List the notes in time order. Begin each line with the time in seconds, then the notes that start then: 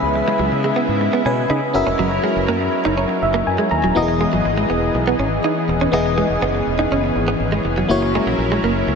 Already playing: C#3 G#3 B3 C#4 E4 G#4 B4 E5 B5
0.02 C#2
0.15 muted clean electric guitar stroke
0.28 G#3
0.39 C#2 F#3
0.52 C#3, muted clean electric guitar stroke
0.64 G#3
0.76 B3
0.88 G#2
1.01 muted clean electric guitar stroke
1.13 B3
1.25 B2 C#4 B4 G#5
1.50 C#3 D#4 D#5 B5
1.73 F#1 F#3 C#4 E4 F#4 A#4 E5, muted clean electric guitar stroke
1.87 F1 C#4
1.99 F#1 F#3
2.11 muted clean electric guitar stroke
2.24 G#3
2.36 F#1
2.48 F#2 A#3
2.61 muted clean electric guitar stroke
2.85 F#1 D#4
2.98 C#4
3.09 muted clean electric guitar stroke
3.22 F#1 E5
3.34 A#3
3.47 F#2 G#5
3.58 G#3
3.71 D#2 A#5, muted clean electric guitar stroke
3.83 D#1 F#3
3.95 E1 E3 B3 E4 F#4 G#4 D#5
4.02 G#4
4.08 muted clean electric guitar stroke
4.21 G#3
4.33 G#1 F#3
4.45 G#1, muted clean electric guitar stroke
4.57 G#3
4.70 E1 B3
4.94 B1, muted clean electric guitar stroke
5.07 B3
5.19 G#1 C#4
5.44 D#4
5.68 D#1, muted clean electric guitar stroke
5.81 C#4
5.92 E1 E3 B3 C#4 E4 G#4 D#5
6.06 muted clean electric guitar stroke
6.18 G#3
6.30 E1
6.42 F#1 B3
6.55 muted clean electric guitar stroke
6.67 E1
6.79 D#4
6.91 F#1 C#4
7.04 muted clean electric guitar stroke
7.16 G#1
7.28 B3
7.40 G#1
7.52 G#3
7.65 F1, muted clean electric guitar stroke
7.78 F#3
7.88 F#1 F#3 A#3 E4 F#4 A#4 C#5
8.02 muted clean electric guitar stroke
8.15 G#3
8.26 A#1 F#3
8.38 A#1, muted clean electric guitar stroke
8.52 G#3
8.63 F#1 A#3
8.87 C#2, muted clean electric guitar stroke